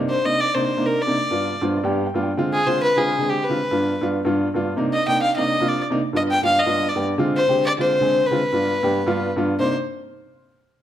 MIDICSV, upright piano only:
0, 0, Header, 1, 2, 480
1, 0, Start_track
1, 0, Key_signature, -3, "minor"
1, 0, Tempo, 301508
1, 1837, Time_signature, 4, 2, 24, 8
1, 17230, End_track
2, 0, Start_track
2, 0, Title_t, "Upright piano"
2, 0, Program_c, 0, 0
2, 0, Note_on_c, 0, 48, 89
2, 0, Note_on_c, 0, 58, 83
2, 0, Note_on_c, 0, 62, 85
2, 0, Note_on_c, 0, 63, 100
2, 246, Note_off_c, 0, 48, 0
2, 250, Note_off_c, 0, 58, 0
2, 254, Note_off_c, 0, 62, 0
2, 259, Note_off_c, 0, 63, 0
2, 385, Note_on_c, 0, 48, 71
2, 390, Note_on_c, 0, 58, 62
2, 400, Note_on_c, 0, 62, 63
2, 408, Note_on_c, 0, 63, 76
2, 726, Note_off_c, 0, 48, 0
2, 728, Note_off_c, 0, 58, 0
2, 734, Note_off_c, 0, 62, 0
2, 737, Note_off_c, 0, 63, 0
2, 868, Note_on_c, 0, 48, 77
2, 885, Note_on_c, 0, 58, 69
2, 891, Note_on_c, 0, 62, 67
2, 898, Note_on_c, 0, 63, 77
2, 1124, Note_off_c, 0, 48, 0
2, 1132, Note_off_c, 0, 58, 0
2, 1136, Note_off_c, 0, 62, 0
2, 1139, Note_off_c, 0, 63, 0
2, 1224, Note_on_c, 0, 48, 78
2, 1229, Note_on_c, 0, 58, 71
2, 1244, Note_on_c, 0, 62, 72
2, 1252, Note_on_c, 0, 63, 91
2, 1567, Note_off_c, 0, 48, 0
2, 1569, Note_off_c, 0, 58, 0
2, 1577, Note_off_c, 0, 62, 0
2, 1581, Note_off_c, 0, 63, 0
2, 1701, Note_on_c, 0, 48, 83
2, 1707, Note_on_c, 0, 58, 69
2, 1712, Note_on_c, 0, 62, 73
2, 1724, Note_on_c, 0, 63, 87
2, 1829, Note_off_c, 0, 48, 0
2, 1832, Note_off_c, 0, 58, 0
2, 1834, Note_off_c, 0, 62, 0
2, 1841, Note_off_c, 0, 63, 0
2, 2077, Note_on_c, 0, 43, 72
2, 2086, Note_on_c, 0, 59, 68
2, 2095, Note_on_c, 0, 62, 65
2, 2105, Note_on_c, 0, 65, 80
2, 2414, Note_off_c, 0, 43, 0
2, 2419, Note_off_c, 0, 59, 0
2, 2423, Note_off_c, 0, 62, 0
2, 2428, Note_off_c, 0, 65, 0
2, 2566, Note_on_c, 0, 43, 85
2, 2577, Note_on_c, 0, 59, 78
2, 2577, Note_on_c, 0, 72, 69
2, 2583, Note_on_c, 0, 62, 73
2, 2590, Note_on_c, 0, 65, 91
2, 2793, Note_off_c, 0, 72, 0
2, 2815, Note_off_c, 0, 43, 0
2, 2818, Note_on_c, 0, 74, 74
2, 2821, Note_off_c, 0, 59, 0
2, 2824, Note_off_c, 0, 62, 0
2, 2827, Note_off_c, 0, 65, 0
2, 2922, Note_on_c, 0, 43, 97
2, 2926, Note_on_c, 0, 59, 86
2, 2935, Note_on_c, 0, 62, 79
2, 2941, Note_on_c, 0, 67, 103
2, 3033, Note_off_c, 0, 74, 0
2, 3047, Note_on_c, 0, 77, 68
2, 3258, Note_off_c, 0, 43, 0
2, 3260, Note_off_c, 0, 59, 0
2, 3264, Note_off_c, 0, 62, 0
2, 3267, Note_off_c, 0, 67, 0
2, 3268, Note_off_c, 0, 77, 0
2, 3288, Note_on_c, 0, 79, 69
2, 3411, Note_on_c, 0, 43, 85
2, 3416, Note_on_c, 0, 59, 78
2, 3425, Note_on_c, 0, 62, 80
2, 3431, Note_on_c, 0, 65, 93
2, 3508, Note_off_c, 0, 79, 0
2, 3548, Note_on_c, 0, 79, 66
2, 3659, Note_off_c, 0, 43, 0
2, 3661, Note_off_c, 0, 59, 0
2, 3666, Note_off_c, 0, 62, 0
2, 3669, Note_off_c, 0, 65, 0
2, 3759, Note_off_c, 0, 79, 0
2, 3775, Note_on_c, 0, 50, 93
2, 3781, Note_on_c, 0, 56, 88
2, 3784, Note_on_c, 0, 60, 86
2, 3799, Note_on_c, 0, 65, 103
2, 4105, Note_off_c, 0, 50, 0
2, 4108, Note_off_c, 0, 56, 0
2, 4110, Note_off_c, 0, 60, 0
2, 4117, Note_off_c, 0, 65, 0
2, 4237, Note_on_c, 0, 50, 73
2, 4248, Note_on_c, 0, 56, 66
2, 4253, Note_on_c, 0, 60, 67
2, 4268, Note_on_c, 0, 65, 84
2, 4577, Note_off_c, 0, 50, 0
2, 4582, Note_off_c, 0, 56, 0
2, 4585, Note_off_c, 0, 60, 0
2, 4592, Note_off_c, 0, 65, 0
2, 4710, Note_on_c, 0, 50, 73
2, 4720, Note_on_c, 0, 56, 69
2, 4729, Note_on_c, 0, 60, 67
2, 4733, Note_on_c, 0, 65, 85
2, 4969, Note_off_c, 0, 50, 0
2, 4975, Note_off_c, 0, 56, 0
2, 4979, Note_off_c, 0, 60, 0
2, 4981, Note_off_c, 0, 65, 0
2, 5065, Note_on_c, 0, 50, 79
2, 5070, Note_on_c, 0, 56, 74
2, 5084, Note_on_c, 0, 60, 74
2, 5092, Note_on_c, 0, 68, 87
2, 5411, Note_off_c, 0, 50, 0
2, 5414, Note_off_c, 0, 56, 0
2, 5421, Note_off_c, 0, 60, 0
2, 5425, Note_off_c, 0, 68, 0
2, 5556, Note_on_c, 0, 50, 77
2, 5569, Note_on_c, 0, 56, 71
2, 5570, Note_on_c, 0, 60, 73
2, 5579, Note_on_c, 0, 65, 86
2, 5681, Note_off_c, 0, 50, 0
2, 5687, Note_off_c, 0, 56, 0
2, 5688, Note_off_c, 0, 60, 0
2, 5693, Note_off_c, 0, 65, 0
2, 5903, Note_on_c, 0, 43, 77
2, 5916, Note_on_c, 0, 59, 67
2, 5920, Note_on_c, 0, 62, 67
2, 5929, Note_on_c, 0, 65, 79
2, 6251, Note_off_c, 0, 43, 0
2, 6257, Note_off_c, 0, 59, 0
2, 6259, Note_off_c, 0, 62, 0
2, 6264, Note_off_c, 0, 65, 0
2, 6387, Note_on_c, 0, 43, 83
2, 6398, Note_on_c, 0, 59, 74
2, 6408, Note_on_c, 0, 62, 71
2, 6415, Note_on_c, 0, 65, 89
2, 6649, Note_off_c, 0, 43, 0
2, 6654, Note_off_c, 0, 59, 0
2, 6659, Note_off_c, 0, 62, 0
2, 6663, Note_off_c, 0, 65, 0
2, 6763, Note_on_c, 0, 43, 94
2, 6763, Note_on_c, 0, 59, 85
2, 6774, Note_on_c, 0, 62, 79
2, 6787, Note_on_c, 0, 65, 98
2, 7101, Note_off_c, 0, 43, 0
2, 7101, Note_off_c, 0, 59, 0
2, 7107, Note_off_c, 0, 62, 0
2, 7113, Note_off_c, 0, 65, 0
2, 7230, Note_on_c, 0, 43, 85
2, 7239, Note_on_c, 0, 59, 73
2, 7248, Note_on_c, 0, 62, 81
2, 7261, Note_on_c, 0, 65, 97
2, 7491, Note_off_c, 0, 43, 0
2, 7495, Note_off_c, 0, 59, 0
2, 7500, Note_off_c, 0, 62, 0
2, 7506, Note_off_c, 0, 65, 0
2, 7584, Note_on_c, 0, 48, 92
2, 7594, Note_on_c, 0, 58, 83
2, 7607, Note_on_c, 0, 63, 103
2, 7608, Note_on_c, 0, 62, 81
2, 7932, Note_off_c, 0, 48, 0
2, 7937, Note_off_c, 0, 58, 0
2, 7943, Note_off_c, 0, 63, 0
2, 7944, Note_off_c, 0, 62, 0
2, 8069, Note_on_c, 0, 48, 71
2, 8082, Note_on_c, 0, 58, 65
2, 8084, Note_on_c, 0, 62, 68
2, 8098, Note_on_c, 0, 63, 82
2, 8414, Note_off_c, 0, 48, 0
2, 8421, Note_off_c, 0, 58, 0
2, 8422, Note_off_c, 0, 62, 0
2, 8429, Note_off_c, 0, 63, 0
2, 8548, Note_on_c, 0, 48, 77
2, 8560, Note_on_c, 0, 58, 71
2, 8565, Note_on_c, 0, 62, 67
2, 8570, Note_on_c, 0, 63, 86
2, 8809, Note_off_c, 0, 48, 0
2, 8816, Note_off_c, 0, 58, 0
2, 8818, Note_off_c, 0, 62, 0
2, 8821, Note_off_c, 0, 63, 0
2, 8922, Note_on_c, 0, 48, 80
2, 8926, Note_on_c, 0, 58, 76
2, 8941, Note_on_c, 0, 62, 75
2, 8944, Note_on_c, 0, 65, 95
2, 9260, Note_off_c, 0, 48, 0
2, 9262, Note_off_c, 0, 58, 0
2, 9270, Note_off_c, 0, 62, 0
2, 9271, Note_off_c, 0, 65, 0
2, 9398, Note_on_c, 0, 48, 93
2, 9405, Note_on_c, 0, 58, 85
2, 9417, Note_on_c, 0, 62, 89
2, 9421, Note_on_c, 0, 63, 111
2, 9522, Note_off_c, 0, 48, 0
2, 9526, Note_off_c, 0, 58, 0
2, 9532, Note_off_c, 0, 62, 0
2, 9534, Note_off_c, 0, 63, 0
2, 9758, Note_on_c, 0, 43, 74
2, 9763, Note_on_c, 0, 59, 70
2, 9774, Note_on_c, 0, 62, 67
2, 9787, Note_on_c, 0, 65, 80
2, 10098, Note_off_c, 0, 43, 0
2, 10100, Note_off_c, 0, 59, 0
2, 10106, Note_off_c, 0, 62, 0
2, 10113, Note_off_c, 0, 65, 0
2, 10217, Note_on_c, 0, 43, 69
2, 10228, Note_on_c, 0, 59, 65
2, 10235, Note_on_c, 0, 62, 65
2, 10251, Note_on_c, 0, 65, 75
2, 10483, Note_off_c, 0, 43, 0
2, 10489, Note_off_c, 0, 59, 0
2, 10492, Note_off_c, 0, 62, 0
2, 10500, Note_off_c, 0, 65, 0
2, 10597, Note_on_c, 0, 43, 79
2, 10603, Note_on_c, 0, 59, 70
2, 10612, Note_on_c, 0, 62, 72
2, 10619, Note_on_c, 0, 65, 81
2, 10937, Note_off_c, 0, 43, 0
2, 10940, Note_off_c, 0, 59, 0
2, 10945, Note_off_c, 0, 62, 0
2, 10948, Note_off_c, 0, 65, 0
2, 11069, Note_on_c, 0, 43, 76
2, 11072, Note_on_c, 0, 62, 72
2, 11078, Note_on_c, 0, 59, 72
2, 11086, Note_on_c, 0, 67, 83
2, 11328, Note_off_c, 0, 43, 0
2, 11330, Note_off_c, 0, 62, 0
2, 11333, Note_off_c, 0, 59, 0
2, 11337, Note_off_c, 0, 67, 0
2, 11429, Note_on_c, 0, 50, 100
2, 11431, Note_on_c, 0, 56, 91
2, 11442, Note_on_c, 0, 60, 91
2, 11452, Note_on_c, 0, 65, 107
2, 11772, Note_off_c, 0, 50, 0
2, 11773, Note_off_c, 0, 56, 0
2, 11779, Note_off_c, 0, 60, 0
2, 11784, Note_off_c, 0, 65, 0
2, 11905, Note_on_c, 0, 50, 76
2, 11912, Note_on_c, 0, 56, 68
2, 11925, Note_on_c, 0, 60, 75
2, 11932, Note_on_c, 0, 67, 86
2, 12250, Note_off_c, 0, 50, 0
2, 12253, Note_off_c, 0, 56, 0
2, 12260, Note_off_c, 0, 60, 0
2, 12263, Note_off_c, 0, 67, 0
2, 12383, Note_on_c, 0, 50, 80
2, 12394, Note_on_c, 0, 56, 73
2, 12404, Note_on_c, 0, 60, 71
2, 12413, Note_on_c, 0, 65, 84
2, 12644, Note_off_c, 0, 50, 0
2, 12650, Note_off_c, 0, 56, 0
2, 12655, Note_off_c, 0, 60, 0
2, 12660, Note_off_c, 0, 65, 0
2, 12747, Note_on_c, 0, 50, 84
2, 12749, Note_on_c, 0, 56, 77
2, 12764, Note_on_c, 0, 60, 74
2, 12769, Note_on_c, 0, 68, 93
2, 13090, Note_off_c, 0, 50, 0
2, 13091, Note_off_c, 0, 56, 0
2, 13099, Note_off_c, 0, 60, 0
2, 13101, Note_off_c, 0, 68, 0
2, 13223, Note_on_c, 0, 50, 83
2, 13235, Note_on_c, 0, 56, 80
2, 13244, Note_on_c, 0, 60, 78
2, 13255, Note_on_c, 0, 65, 89
2, 13352, Note_off_c, 0, 50, 0
2, 13358, Note_off_c, 0, 56, 0
2, 13362, Note_off_c, 0, 60, 0
2, 13368, Note_off_c, 0, 65, 0
2, 13568, Note_on_c, 0, 43, 76
2, 13577, Note_on_c, 0, 59, 69
2, 13586, Note_on_c, 0, 62, 68
2, 13590, Note_on_c, 0, 65, 83
2, 13920, Note_off_c, 0, 43, 0
2, 13924, Note_off_c, 0, 59, 0
2, 13928, Note_off_c, 0, 62, 0
2, 13930, Note_off_c, 0, 65, 0
2, 14054, Note_on_c, 0, 43, 91
2, 14060, Note_on_c, 0, 59, 82
2, 14067, Note_on_c, 0, 62, 78
2, 14074, Note_on_c, 0, 67, 96
2, 14318, Note_off_c, 0, 43, 0
2, 14321, Note_off_c, 0, 59, 0
2, 14324, Note_off_c, 0, 62, 0
2, 14328, Note_off_c, 0, 67, 0
2, 14430, Note_on_c, 0, 43, 95
2, 14438, Note_on_c, 0, 62, 87
2, 14439, Note_on_c, 0, 59, 94
2, 14448, Note_on_c, 0, 65, 105
2, 14769, Note_off_c, 0, 43, 0
2, 14773, Note_off_c, 0, 62, 0
2, 14774, Note_off_c, 0, 59, 0
2, 14778, Note_off_c, 0, 65, 0
2, 14904, Note_on_c, 0, 43, 94
2, 14912, Note_on_c, 0, 59, 89
2, 14915, Note_on_c, 0, 62, 90
2, 14932, Note_on_c, 0, 65, 100
2, 15162, Note_off_c, 0, 43, 0
2, 15166, Note_off_c, 0, 59, 0
2, 15167, Note_off_c, 0, 62, 0
2, 15176, Note_off_c, 0, 65, 0
2, 15271, Note_on_c, 0, 63, 88
2, 15272, Note_on_c, 0, 58, 75
2, 15279, Note_on_c, 0, 62, 70
2, 15280, Note_on_c, 0, 48, 84
2, 15496, Note_off_c, 0, 58, 0
2, 15496, Note_off_c, 0, 63, 0
2, 15500, Note_off_c, 0, 62, 0
2, 15501, Note_off_c, 0, 48, 0
2, 17230, End_track
0, 0, End_of_file